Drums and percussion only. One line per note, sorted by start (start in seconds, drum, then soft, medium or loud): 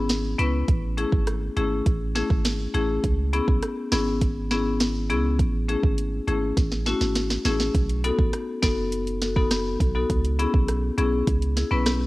0.09 snare loud
0.09 closed hi-hat medium
0.39 closed hi-hat medium
0.68 kick loud
0.68 closed hi-hat medium
0.98 closed hi-hat medium
1.12 kick loud
1.27 cross-stick medium
1.27 closed hi-hat medium
1.57 closed hi-hat medium
1.86 kick medium
1.86 closed hi-hat medium
2.16 snare medium
2.16 closed hi-hat soft
2.30 kick loud
2.45 snare loud
2.45 closed hi-hat medium
2.75 closed hi-hat medium
3.04 kick loud
3.04 closed hi-hat medium
3.33 closed hi-hat medium
3.48 kick loud
3.63 cross-stick medium
3.63 closed hi-hat medium
3.92 snare loud
3.92 closed hi-hat soft
4.21 kick medium
4.21 closed hi-hat medium
4.51 snare medium
4.51 closed hi-hat soft
4.80 snare loud
4.80 closed hi-hat medium
5.10 closed hi-hat medium
5.39 kick loud
5.39 closed hi-hat medium
5.69 closed hi-hat medium
5.83 kick loud
5.98 closed hi-hat medium
6.28 closed hi-hat medium
6.57 kick medium
6.57 snare medium
6.57 closed hi-hat medium
6.72 snare medium
6.86 snare medium
6.86 closed hi-hat soft
7.01 snare medium
7.15 snare medium
7.15 closed hi-hat medium
7.30 snare medium
7.45 snare loud
7.45 closed hi-hat medium
7.60 snare medium
7.75 kick loud
7.75 closed hi-hat medium
7.89 closed hi-hat medium
8.04 closed hi-hat medium
8.19 kick loud
8.33 cross-stick medium
8.33 closed hi-hat medium
8.63 kick medium
8.63 snare loud
8.63 closed hi-hat medium
8.92 closed hi-hat medium
9.07 closed hi-hat medium
9.22 snare medium
9.22 closed hi-hat medium
9.36 kick loud
9.51 cross-stick medium
9.51 snare loud
9.51 closed hi-hat medium
9.80 kick medium
9.80 closed hi-hat medium
10.10 kick loud
10.10 closed hi-hat medium
10.25 closed hi-hat medium
10.39 closed hi-hat medium
10.54 kick loud
10.68 cross-stick medium
10.68 closed hi-hat medium
10.98 closed hi-hat medium
11.27 kick medium
11.27 closed hi-hat medium
11.42 closed hi-hat medium
11.57 snare medium
11.57 closed hi-hat medium
11.86 cross-stick medium
11.86 snare loud
11.86 closed hi-hat medium